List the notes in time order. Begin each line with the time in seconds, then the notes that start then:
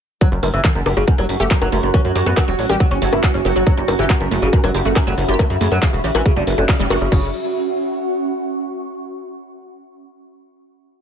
0.21 F#3 C#4 F#4, kick, closed hi-hat
0.32 F#1 F#2, closed hi-hat
0.43 F#1 F#2 A3 F#4, open hi-hat, high bongo
0.52 F#1 E3 C#6, closed hi-hat
0.57 F#5
0.64 F#2 E3, kick, clap, closed hi-hat
0.75 F#1 F#2, closed hi-hat
0.86 F#1 F#2 G4, open hi-hat, high bongo
0.97 F#1 C#3 F#4, closed hi-hat
1.08 F#2, kick, closed hi-hat
1.18 F#1 F#3 G3, closed hi-hat, high bongo
1.29 F#1 F#2, open hi-hat
1.40 F#1 A3 G4, closed hi-hat
1.51 F#2 F#3, kick, clap, closed hi-hat
1.62 F#1 F#3, closed hi-hat, high bongo
1.72 F#1 F#2 A3, open hi-hat
1.83 F#1 F#2, closed hi-hat
1.94 E3 C#4, kick, closed hi-hat, high bongo
2.05 F#2 F#3, closed hi-hat
2.15 F#2 F#3 G4, open hi-hat
2.26 F#2 B3 F#4, closed hi-hat
2.37 F#3, kick, clap, closed hi-hat, high bongo
2.48 E1 F#3 G3, closed hi-hat
2.59 A1 F#3, open hi-hat
2.69 A1 G3 G4, closed hi-hat, high bongo
2.80 F#3, kick, closed hi-hat
2.91 F#1 C#4, closed hi-hat
3.02 F#1 F#3 A3, open hi-hat
3.13 F#1 E4, closed hi-hat, high bongo
3.23 E3 F#3, kick, clap, closed hi-hat
3.34 F#1 C#4, closed hi-hat
3.45 F#1 F#3 G4, open hi-hat, high bongo
3.56 F#1 F#3 F#4 E5, closed hi-hat
3.67 F#3, kick, closed hi-hat
3.77 F#1 F#2 G3, closed hi-hat
3.84 B5
3.88 F#1 F#2, open hi-hat, high bongo
3.99 F#1 E3 G4, closed hi-hat
4.10 F#2 F#3, kick, clap, closed hi-hat
4.21 F#1 F#2, closed hi-hat, high bongo
4.31 F#1 F#2 A3, open hi-hat
4.42 F#1 C#3, closed hi-hat
4.53 F#2 E3, kick, closed hi-hat
4.64 F#1 F#3, closed hi-hat, high bongo
4.74 F#1 F#2 G4, open hi-hat
4.85 F#1 A3 F#4, closed hi-hat
4.96 F#2, kick, clap, closed hi-hat, high bongo
5.07 F#1 F#3 G3, closed hi-hat
5.18 F#1 F#2, open hi-hat
5.28 F#1 F#2 G4, closed hi-hat
5.39 F#3 A3, kick, closed hi-hat, high bongo
5.50 F#2 C#3, closed hi-hat
5.61 F#2 C#3 A3, open hi-hat
5.72 F#2 F#3, closed hi-hat, high bongo
5.82 C#3 E3, kick, clap, closed hi-hat
5.93 E1 C#3, closed hi-hat
6.04 A1 C#3 G4, open hi-hat
6.15 A1 E3 F#4, closed hi-hat, high bongo
6.26 C#3, kick, closed hi-hat
6.36 F#1 D3 G3, closed hi-hat
6.47 F#1 C#3, open hi-hat, high bongo
6.58 F#1 D3 C#4, closed hi-hat
6.69 C#3 F#3, kick, clap, closed hi-hat
6.80 F#1 C#3 G3, closed hi-hat
6.90 F#1 C#3 F#4, open hi-hat, high bongo
7.01 F#1 C#3, closed hi-hat
7.12 F#1 C#3 F#3 C#4, kick, crash
7.18 F#4
7.25 F#5
7.31 C#6